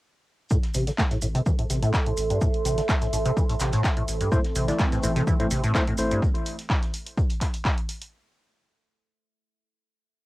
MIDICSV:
0, 0, Header, 1, 7, 480
1, 0, Start_track
1, 0, Tempo, 476190
1, 513, Time_signature, 4, 2, 24, 8
1, 10338, End_track
2, 0, Start_track
2, 0, Title_t, "Ambient pad"
2, 0, Program_c, 0, 92
2, 510, Note_on_c, 0, 69, 97
2, 760, Note_on_c, 0, 84, 82
2, 1122, Note_on_c, 0, 76, 70
2, 6272, Note_off_c, 0, 69, 0
2, 6273, Note_off_c, 0, 84, 0
2, 6274, Note_off_c, 0, 76, 0
2, 10338, End_track
3, 0, Start_track
3, 0, Title_t, "Tine electric piano"
3, 0, Program_c, 1, 4
3, 4352, Note_on_c, 1, 57, 88
3, 4352, Note_on_c, 1, 64, 83
3, 4352, Note_on_c, 1, 72, 104
3, 4427, Note_off_c, 1, 57, 0
3, 4427, Note_off_c, 1, 64, 0
3, 4427, Note_off_c, 1, 72, 0
3, 4719, Note_on_c, 1, 57, 75
3, 4719, Note_on_c, 1, 64, 70
3, 4719, Note_on_c, 1, 74, 84
3, 4825, Note_off_c, 1, 57, 0
3, 4825, Note_off_c, 1, 64, 0
3, 4825, Note_off_c, 1, 74, 0
3, 5073, Note_on_c, 1, 57, 85
3, 5073, Note_on_c, 1, 64, 76
3, 5073, Note_on_c, 1, 72, 89
3, 5147, Note_off_c, 1, 64, 0
3, 5147, Note_off_c, 1, 72, 0
3, 5148, Note_off_c, 1, 57, 0
3, 5439, Note_on_c, 1, 57, 89
3, 5439, Note_on_c, 1, 64, 81
3, 5439, Note_on_c, 1, 72, 98
3, 5506, Note_off_c, 1, 57, 0
3, 5506, Note_off_c, 1, 64, 0
3, 5506, Note_off_c, 1, 72, 0
3, 5792, Note_on_c, 1, 57, 90
3, 5792, Note_on_c, 1, 64, 79
3, 5792, Note_on_c, 1, 72, 95
3, 5867, Note_off_c, 1, 57, 0
3, 5867, Note_off_c, 1, 64, 0
3, 5867, Note_off_c, 1, 72, 0
3, 6032, Note_on_c, 1, 57, 91
3, 6032, Note_on_c, 1, 64, 81
3, 6032, Note_on_c, 1, 72, 100
3, 6246, Note_off_c, 1, 57, 0
3, 6246, Note_off_c, 1, 64, 0
3, 6246, Note_off_c, 1, 72, 0
3, 10338, End_track
4, 0, Start_track
4, 0, Title_t, "Analog synth pad"
4, 0, Program_c, 2, 89
4, 4353, Note_on_c, 2, 60, 84
4, 4354, Note_on_c, 2, 52, 77
4, 4354, Note_on_c, 2, 57, 69
4, 6254, Note_off_c, 2, 52, 0
4, 6254, Note_off_c, 2, 60, 0
4, 6255, Note_off_c, 2, 57, 0
4, 10338, End_track
5, 0, Start_track
5, 0, Title_t, "Acid bass"
5, 0, Program_c, 3, 38
5, 513, Note_on_c, 3, 45, 79
5, 583, Note_off_c, 3, 45, 0
5, 752, Note_on_c, 3, 48, 75
5, 858, Note_off_c, 3, 48, 0
5, 880, Note_on_c, 3, 50, 73
5, 917, Note_off_c, 3, 50, 0
5, 991, Note_on_c, 3, 57, 98
5, 1034, Note_off_c, 3, 57, 0
5, 1119, Note_on_c, 3, 45, 75
5, 1182, Note_off_c, 3, 45, 0
5, 1232, Note_on_c, 3, 45, 73
5, 1275, Note_off_c, 3, 45, 0
5, 1359, Note_on_c, 3, 48, 96
5, 1422, Note_off_c, 3, 48, 0
5, 1473, Note_on_c, 3, 52, 82
5, 1543, Note_off_c, 3, 52, 0
5, 1601, Note_on_c, 3, 45, 74
5, 1663, Note_off_c, 3, 45, 0
5, 1714, Note_on_c, 3, 48, 73
5, 1819, Note_off_c, 3, 48, 0
5, 1841, Note_on_c, 3, 45, 95
5, 1934, Note_off_c, 3, 45, 0
5, 2081, Note_on_c, 3, 45, 74
5, 2143, Note_off_c, 3, 45, 0
5, 2320, Note_on_c, 3, 43, 74
5, 2413, Note_off_c, 3, 43, 0
5, 2433, Note_on_c, 3, 45, 77
5, 2503, Note_off_c, 3, 45, 0
5, 2673, Note_on_c, 3, 48, 77
5, 2778, Note_off_c, 3, 48, 0
5, 2800, Note_on_c, 3, 50, 72
5, 2838, Note_off_c, 3, 50, 0
5, 2912, Note_on_c, 3, 57, 101
5, 2955, Note_off_c, 3, 57, 0
5, 3039, Note_on_c, 3, 45, 74
5, 3102, Note_off_c, 3, 45, 0
5, 3152, Note_on_c, 3, 45, 73
5, 3195, Note_off_c, 3, 45, 0
5, 3280, Note_on_c, 3, 48, 98
5, 3342, Note_off_c, 3, 48, 0
5, 3393, Note_on_c, 3, 52, 79
5, 3463, Note_off_c, 3, 52, 0
5, 3519, Note_on_c, 3, 45, 73
5, 3582, Note_off_c, 3, 45, 0
5, 3633, Note_on_c, 3, 48, 75
5, 3738, Note_off_c, 3, 48, 0
5, 3762, Note_on_c, 3, 45, 96
5, 3854, Note_off_c, 3, 45, 0
5, 4001, Note_on_c, 3, 45, 77
5, 4063, Note_off_c, 3, 45, 0
5, 4240, Note_on_c, 3, 43, 76
5, 4333, Note_off_c, 3, 43, 0
5, 4352, Note_on_c, 3, 45, 82
5, 4423, Note_off_c, 3, 45, 0
5, 4593, Note_on_c, 3, 48, 74
5, 4698, Note_off_c, 3, 48, 0
5, 4721, Note_on_c, 3, 50, 75
5, 4758, Note_off_c, 3, 50, 0
5, 4833, Note_on_c, 3, 57, 99
5, 4875, Note_off_c, 3, 57, 0
5, 4960, Note_on_c, 3, 45, 78
5, 5022, Note_off_c, 3, 45, 0
5, 5072, Note_on_c, 3, 45, 75
5, 5115, Note_off_c, 3, 45, 0
5, 5200, Note_on_c, 3, 48, 98
5, 5262, Note_off_c, 3, 48, 0
5, 5313, Note_on_c, 3, 52, 80
5, 5383, Note_off_c, 3, 52, 0
5, 5441, Note_on_c, 3, 45, 77
5, 5503, Note_off_c, 3, 45, 0
5, 5554, Note_on_c, 3, 48, 78
5, 5659, Note_off_c, 3, 48, 0
5, 5681, Note_on_c, 3, 45, 100
5, 5774, Note_off_c, 3, 45, 0
5, 5922, Note_on_c, 3, 45, 78
5, 5983, Note_off_c, 3, 45, 0
5, 6161, Note_on_c, 3, 43, 79
5, 6254, Note_off_c, 3, 43, 0
5, 10338, End_track
6, 0, Start_track
6, 0, Title_t, "Analog synth bass"
6, 0, Program_c, 4, 38
6, 753, Note_on_c, 4, 33, 94
6, 904, Note_off_c, 4, 33, 0
6, 1233, Note_on_c, 4, 33, 87
6, 1384, Note_off_c, 4, 33, 0
6, 1714, Note_on_c, 4, 33, 92
6, 1865, Note_off_c, 4, 33, 0
6, 2194, Note_on_c, 4, 33, 80
6, 2345, Note_off_c, 4, 33, 0
6, 2673, Note_on_c, 4, 33, 95
6, 2824, Note_off_c, 4, 33, 0
6, 3153, Note_on_c, 4, 33, 89
6, 3304, Note_off_c, 4, 33, 0
6, 3634, Note_on_c, 4, 33, 95
6, 3785, Note_off_c, 4, 33, 0
6, 4114, Note_on_c, 4, 33, 78
6, 4265, Note_off_c, 4, 33, 0
6, 4593, Note_on_c, 4, 33, 97
6, 4744, Note_off_c, 4, 33, 0
6, 5073, Note_on_c, 4, 33, 88
6, 5224, Note_off_c, 4, 33, 0
6, 5554, Note_on_c, 4, 33, 95
6, 5705, Note_off_c, 4, 33, 0
6, 6033, Note_on_c, 4, 33, 83
6, 6185, Note_off_c, 4, 33, 0
6, 10338, End_track
7, 0, Start_track
7, 0, Title_t, "Drums"
7, 502, Note_on_c, 9, 82, 86
7, 513, Note_on_c, 9, 36, 110
7, 513, Note_on_c, 9, 70, 50
7, 602, Note_off_c, 9, 82, 0
7, 613, Note_off_c, 9, 70, 0
7, 614, Note_off_c, 9, 36, 0
7, 635, Note_on_c, 9, 38, 43
7, 640, Note_on_c, 9, 42, 34
7, 735, Note_off_c, 9, 38, 0
7, 741, Note_off_c, 9, 42, 0
7, 747, Note_on_c, 9, 70, 87
7, 752, Note_on_c, 9, 38, 36
7, 753, Note_on_c, 9, 46, 91
7, 753, Note_on_c, 9, 82, 57
7, 847, Note_off_c, 9, 70, 0
7, 853, Note_off_c, 9, 38, 0
7, 854, Note_off_c, 9, 46, 0
7, 854, Note_off_c, 9, 82, 0
7, 876, Note_on_c, 9, 38, 39
7, 880, Note_on_c, 9, 42, 60
7, 883, Note_on_c, 9, 70, 37
7, 976, Note_off_c, 9, 38, 0
7, 981, Note_off_c, 9, 42, 0
7, 984, Note_off_c, 9, 70, 0
7, 991, Note_on_c, 9, 39, 109
7, 992, Note_on_c, 9, 38, 109
7, 992, Note_on_c, 9, 82, 83
7, 993, Note_on_c, 9, 36, 107
7, 1000, Note_on_c, 9, 70, 45
7, 1092, Note_off_c, 9, 39, 0
7, 1093, Note_off_c, 9, 38, 0
7, 1093, Note_off_c, 9, 82, 0
7, 1094, Note_off_c, 9, 36, 0
7, 1101, Note_off_c, 9, 70, 0
7, 1117, Note_on_c, 9, 38, 47
7, 1120, Note_on_c, 9, 42, 35
7, 1121, Note_on_c, 9, 70, 31
7, 1217, Note_off_c, 9, 38, 0
7, 1221, Note_off_c, 9, 42, 0
7, 1222, Note_off_c, 9, 70, 0
7, 1226, Note_on_c, 9, 70, 82
7, 1230, Note_on_c, 9, 82, 66
7, 1232, Note_on_c, 9, 46, 88
7, 1326, Note_off_c, 9, 70, 0
7, 1331, Note_off_c, 9, 82, 0
7, 1333, Note_off_c, 9, 46, 0
7, 1360, Note_on_c, 9, 42, 62
7, 1363, Note_on_c, 9, 70, 35
7, 1365, Note_off_c, 9, 42, 0
7, 1365, Note_on_c, 9, 42, 39
7, 1464, Note_off_c, 9, 70, 0
7, 1466, Note_off_c, 9, 42, 0
7, 1471, Note_on_c, 9, 82, 77
7, 1473, Note_on_c, 9, 36, 106
7, 1473, Note_on_c, 9, 70, 47
7, 1572, Note_off_c, 9, 82, 0
7, 1574, Note_off_c, 9, 36, 0
7, 1574, Note_off_c, 9, 70, 0
7, 1600, Note_on_c, 9, 42, 52
7, 1701, Note_off_c, 9, 42, 0
7, 1712, Note_on_c, 9, 38, 33
7, 1712, Note_on_c, 9, 82, 58
7, 1713, Note_on_c, 9, 46, 101
7, 1717, Note_on_c, 9, 70, 93
7, 1812, Note_off_c, 9, 38, 0
7, 1812, Note_off_c, 9, 82, 0
7, 1814, Note_off_c, 9, 46, 0
7, 1818, Note_off_c, 9, 70, 0
7, 1840, Note_on_c, 9, 42, 61
7, 1850, Note_on_c, 9, 70, 36
7, 1941, Note_off_c, 9, 42, 0
7, 1951, Note_off_c, 9, 70, 0
7, 1951, Note_on_c, 9, 70, 49
7, 1953, Note_on_c, 9, 36, 105
7, 1953, Note_on_c, 9, 39, 107
7, 1955, Note_on_c, 9, 38, 106
7, 1957, Note_on_c, 9, 82, 78
7, 2052, Note_off_c, 9, 70, 0
7, 2053, Note_off_c, 9, 39, 0
7, 2054, Note_off_c, 9, 36, 0
7, 2056, Note_off_c, 9, 38, 0
7, 2058, Note_off_c, 9, 82, 0
7, 2081, Note_on_c, 9, 42, 52
7, 2182, Note_off_c, 9, 42, 0
7, 2186, Note_on_c, 9, 70, 79
7, 2193, Note_on_c, 9, 46, 88
7, 2193, Note_on_c, 9, 82, 69
7, 2287, Note_off_c, 9, 70, 0
7, 2294, Note_off_c, 9, 46, 0
7, 2294, Note_off_c, 9, 82, 0
7, 2321, Note_on_c, 9, 42, 60
7, 2324, Note_on_c, 9, 70, 33
7, 2422, Note_off_c, 9, 42, 0
7, 2425, Note_off_c, 9, 70, 0
7, 2429, Note_on_c, 9, 82, 81
7, 2431, Note_on_c, 9, 70, 49
7, 2433, Note_on_c, 9, 36, 114
7, 2530, Note_off_c, 9, 82, 0
7, 2532, Note_off_c, 9, 70, 0
7, 2534, Note_off_c, 9, 36, 0
7, 2561, Note_on_c, 9, 42, 34
7, 2661, Note_off_c, 9, 42, 0
7, 2673, Note_on_c, 9, 46, 95
7, 2673, Note_on_c, 9, 82, 64
7, 2680, Note_on_c, 9, 70, 97
7, 2773, Note_off_c, 9, 82, 0
7, 2774, Note_off_c, 9, 46, 0
7, 2780, Note_off_c, 9, 70, 0
7, 2799, Note_on_c, 9, 70, 38
7, 2800, Note_on_c, 9, 38, 37
7, 2801, Note_on_c, 9, 42, 62
7, 2900, Note_off_c, 9, 70, 0
7, 2901, Note_off_c, 9, 38, 0
7, 2902, Note_off_c, 9, 42, 0
7, 2909, Note_on_c, 9, 38, 101
7, 2909, Note_on_c, 9, 82, 75
7, 2912, Note_on_c, 9, 39, 110
7, 2913, Note_on_c, 9, 36, 114
7, 2914, Note_on_c, 9, 70, 52
7, 3009, Note_off_c, 9, 38, 0
7, 3010, Note_off_c, 9, 82, 0
7, 3013, Note_off_c, 9, 39, 0
7, 3014, Note_off_c, 9, 36, 0
7, 3015, Note_off_c, 9, 70, 0
7, 3040, Note_on_c, 9, 70, 39
7, 3041, Note_on_c, 9, 42, 33
7, 3044, Note_on_c, 9, 38, 41
7, 3141, Note_off_c, 9, 70, 0
7, 3142, Note_off_c, 9, 42, 0
7, 3145, Note_off_c, 9, 38, 0
7, 3153, Note_on_c, 9, 82, 59
7, 3154, Note_on_c, 9, 46, 90
7, 3155, Note_on_c, 9, 70, 90
7, 3254, Note_off_c, 9, 46, 0
7, 3254, Note_off_c, 9, 82, 0
7, 3256, Note_off_c, 9, 70, 0
7, 3277, Note_on_c, 9, 70, 41
7, 3281, Note_on_c, 9, 42, 60
7, 3378, Note_off_c, 9, 70, 0
7, 3381, Note_off_c, 9, 42, 0
7, 3393, Note_on_c, 9, 36, 113
7, 3396, Note_on_c, 9, 70, 49
7, 3397, Note_on_c, 9, 82, 75
7, 3494, Note_off_c, 9, 36, 0
7, 3497, Note_off_c, 9, 70, 0
7, 3497, Note_off_c, 9, 82, 0
7, 3521, Note_on_c, 9, 42, 52
7, 3524, Note_off_c, 9, 42, 0
7, 3524, Note_on_c, 9, 42, 38
7, 3623, Note_on_c, 9, 70, 83
7, 3625, Note_off_c, 9, 42, 0
7, 3632, Note_on_c, 9, 38, 34
7, 3633, Note_on_c, 9, 39, 61
7, 3634, Note_on_c, 9, 46, 106
7, 3635, Note_on_c, 9, 82, 66
7, 3724, Note_off_c, 9, 70, 0
7, 3733, Note_off_c, 9, 38, 0
7, 3734, Note_off_c, 9, 39, 0
7, 3734, Note_off_c, 9, 46, 0
7, 3736, Note_off_c, 9, 82, 0
7, 3755, Note_on_c, 9, 70, 42
7, 3756, Note_on_c, 9, 42, 42
7, 3760, Note_off_c, 9, 42, 0
7, 3760, Note_on_c, 9, 42, 59
7, 3856, Note_off_c, 9, 70, 0
7, 3861, Note_off_c, 9, 42, 0
7, 3872, Note_on_c, 9, 39, 115
7, 3873, Note_on_c, 9, 36, 108
7, 3873, Note_on_c, 9, 82, 79
7, 3874, Note_on_c, 9, 38, 102
7, 3876, Note_on_c, 9, 70, 52
7, 3973, Note_off_c, 9, 39, 0
7, 3974, Note_off_c, 9, 36, 0
7, 3974, Note_off_c, 9, 82, 0
7, 3975, Note_off_c, 9, 38, 0
7, 3976, Note_off_c, 9, 70, 0
7, 4000, Note_on_c, 9, 42, 48
7, 4100, Note_off_c, 9, 42, 0
7, 4111, Note_on_c, 9, 82, 60
7, 4112, Note_on_c, 9, 46, 92
7, 4114, Note_on_c, 9, 70, 86
7, 4211, Note_off_c, 9, 82, 0
7, 4213, Note_off_c, 9, 46, 0
7, 4215, Note_off_c, 9, 70, 0
7, 4240, Note_on_c, 9, 42, 61
7, 4243, Note_on_c, 9, 70, 36
7, 4341, Note_off_c, 9, 42, 0
7, 4344, Note_off_c, 9, 70, 0
7, 4351, Note_on_c, 9, 82, 79
7, 4353, Note_on_c, 9, 36, 122
7, 4357, Note_on_c, 9, 70, 49
7, 4452, Note_off_c, 9, 82, 0
7, 4453, Note_off_c, 9, 36, 0
7, 4458, Note_off_c, 9, 70, 0
7, 4478, Note_on_c, 9, 38, 50
7, 4480, Note_on_c, 9, 42, 33
7, 4579, Note_off_c, 9, 38, 0
7, 4581, Note_off_c, 9, 42, 0
7, 4590, Note_on_c, 9, 70, 85
7, 4592, Note_on_c, 9, 38, 37
7, 4592, Note_on_c, 9, 46, 98
7, 4596, Note_on_c, 9, 82, 62
7, 4691, Note_off_c, 9, 70, 0
7, 4693, Note_off_c, 9, 38, 0
7, 4693, Note_off_c, 9, 46, 0
7, 4696, Note_off_c, 9, 82, 0
7, 4720, Note_on_c, 9, 42, 58
7, 4722, Note_on_c, 9, 38, 44
7, 4722, Note_on_c, 9, 70, 40
7, 4821, Note_off_c, 9, 42, 0
7, 4823, Note_off_c, 9, 38, 0
7, 4823, Note_off_c, 9, 70, 0
7, 4826, Note_on_c, 9, 38, 107
7, 4827, Note_on_c, 9, 70, 46
7, 4832, Note_on_c, 9, 39, 108
7, 4833, Note_on_c, 9, 36, 120
7, 4835, Note_on_c, 9, 82, 83
7, 4926, Note_off_c, 9, 38, 0
7, 4928, Note_off_c, 9, 70, 0
7, 4933, Note_off_c, 9, 36, 0
7, 4933, Note_off_c, 9, 39, 0
7, 4936, Note_off_c, 9, 82, 0
7, 4957, Note_on_c, 9, 38, 55
7, 4961, Note_on_c, 9, 42, 33
7, 4965, Note_on_c, 9, 70, 36
7, 5058, Note_off_c, 9, 38, 0
7, 5062, Note_off_c, 9, 42, 0
7, 5063, Note_on_c, 9, 82, 69
7, 5065, Note_off_c, 9, 70, 0
7, 5074, Note_on_c, 9, 46, 92
7, 5074, Note_on_c, 9, 70, 97
7, 5164, Note_off_c, 9, 82, 0
7, 5174, Note_off_c, 9, 46, 0
7, 5175, Note_off_c, 9, 70, 0
7, 5199, Note_on_c, 9, 70, 40
7, 5201, Note_on_c, 9, 42, 59
7, 5300, Note_off_c, 9, 70, 0
7, 5302, Note_off_c, 9, 42, 0
7, 5312, Note_on_c, 9, 36, 120
7, 5313, Note_on_c, 9, 82, 85
7, 5315, Note_on_c, 9, 70, 53
7, 5413, Note_off_c, 9, 36, 0
7, 5414, Note_off_c, 9, 82, 0
7, 5415, Note_off_c, 9, 70, 0
7, 5441, Note_on_c, 9, 42, 52
7, 5541, Note_off_c, 9, 42, 0
7, 5549, Note_on_c, 9, 70, 102
7, 5554, Note_on_c, 9, 38, 42
7, 5554, Note_on_c, 9, 46, 111
7, 5564, Note_on_c, 9, 82, 68
7, 5650, Note_off_c, 9, 70, 0
7, 5654, Note_off_c, 9, 46, 0
7, 5655, Note_off_c, 9, 38, 0
7, 5665, Note_off_c, 9, 82, 0
7, 5681, Note_on_c, 9, 42, 59
7, 5681, Note_on_c, 9, 70, 43
7, 5782, Note_off_c, 9, 42, 0
7, 5782, Note_off_c, 9, 70, 0
7, 5791, Note_on_c, 9, 38, 110
7, 5793, Note_on_c, 9, 36, 116
7, 5793, Note_on_c, 9, 39, 116
7, 5797, Note_on_c, 9, 70, 55
7, 5801, Note_on_c, 9, 82, 87
7, 5891, Note_off_c, 9, 38, 0
7, 5893, Note_off_c, 9, 36, 0
7, 5894, Note_off_c, 9, 39, 0
7, 5898, Note_off_c, 9, 70, 0
7, 5902, Note_off_c, 9, 82, 0
7, 5921, Note_on_c, 9, 42, 50
7, 6021, Note_on_c, 9, 70, 89
7, 6022, Note_off_c, 9, 42, 0
7, 6033, Note_on_c, 9, 46, 92
7, 6034, Note_on_c, 9, 82, 73
7, 6122, Note_off_c, 9, 70, 0
7, 6134, Note_off_c, 9, 46, 0
7, 6134, Note_off_c, 9, 82, 0
7, 6161, Note_on_c, 9, 70, 40
7, 6162, Note_on_c, 9, 42, 61
7, 6262, Note_off_c, 9, 42, 0
7, 6262, Note_off_c, 9, 70, 0
7, 6273, Note_on_c, 9, 36, 120
7, 6281, Note_on_c, 9, 82, 80
7, 6373, Note_off_c, 9, 36, 0
7, 6381, Note_off_c, 9, 82, 0
7, 6401, Note_on_c, 9, 42, 32
7, 6502, Note_off_c, 9, 42, 0
7, 6511, Note_on_c, 9, 82, 60
7, 6513, Note_on_c, 9, 46, 99
7, 6612, Note_off_c, 9, 82, 0
7, 6614, Note_off_c, 9, 46, 0
7, 6637, Note_on_c, 9, 38, 34
7, 6641, Note_on_c, 9, 42, 58
7, 6738, Note_off_c, 9, 38, 0
7, 6742, Note_off_c, 9, 42, 0
7, 6753, Note_on_c, 9, 36, 116
7, 6753, Note_on_c, 9, 39, 109
7, 6753, Note_on_c, 9, 82, 74
7, 6755, Note_on_c, 9, 38, 104
7, 6854, Note_off_c, 9, 36, 0
7, 6854, Note_off_c, 9, 39, 0
7, 6854, Note_off_c, 9, 82, 0
7, 6856, Note_off_c, 9, 38, 0
7, 6879, Note_on_c, 9, 38, 43
7, 6882, Note_on_c, 9, 42, 35
7, 6980, Note_off_c, 9, 38, 0
7, 6983, Note_off_c, 9, 42, 0
7, 6994, Note_on_c, 9, 46, 91
7, 6999, Note_on_c, 9, 82, 75
7, 7095, Note_off_c, 9, 46, 0
7, 7099, Note_off_c, 9, 82, 0
7, 7122, Note_on_c, 9, 42, 60
7, 7223, Note_off_c, 9, 42, 0
7, 7233, Note_on_c, 9, 36, 117
7, 7236, Note_on_c, 9, 82, 93
7, 7334, Note_off_c, 9, 36, 0
7, 7337, Note_off_c, 9, 82, 0
7, 7356, Note_on_c, 9, 42, 44
7, 7362, Note_off_c, 9, 42, 0
7, 7362, Note_on_c, 9, 42, 50
7, 7462, Note_off_c, 9, 42, 0
7, 7470, Note_on_c, 9, 38, 41
7, 7473, Note_on_c, 9, 36, 65
7, 7473, Note_on_c, 9, 39, 61
7, 7474, Note_on_c, 9, 46, 109
7, 7477, Note_on_c, 9, 82, 70
7, 7571, Note_off_c, 9, 38, 0
7, 7574, Note_off_c, 9, 36, 0
7, 7574, Note_off_c, 9, 39, 0
7, 7575, Note_off_c, 9, 46, 0
7, 7578, Note_off_c, 9, 82, 0
7, 7598, Note_on_c, 9, 42, 42
7, 7600, Note_off_c, 9, 42, 0
7, 7600, Note_on_c, 9, 42, 59
7, 7701, Note_off_c, 9, 42, 0
7, 7710, Note_on_c, 9, 38, 118
7, 7712, Note_on_c, 9, 39, 113
7, 7714, Note_on_c, 9, 36, 112
7, 7716, Note_on_c, 9, 82, 83
7, 7810, Note_off_c, 9, 38, 0
7, 7813, Note_off_c, 9, 39, 0
7, 7814, Note_off_c, 9, 36, 0
7, 7817, Note_off_c, 9, 82, 0
7, 7841, Note_on_c, 9, 42, 47
7, 7941, Note_off_c, 9, 42, 0
7, 7954, Note_on_c, 9, 46, 91
7, 7958, Note_on_c, 9, 82, 73
7, 8054, Note_off_c, 9, 46, 0
7, 8059, Note_off_c, 9, 82, 0
7, 8081, Note_on_c, 9, 42, 62
7, 8182, Note_off_c, 9, 42, 0
7, 10338, End_track
0, 0, End_of_file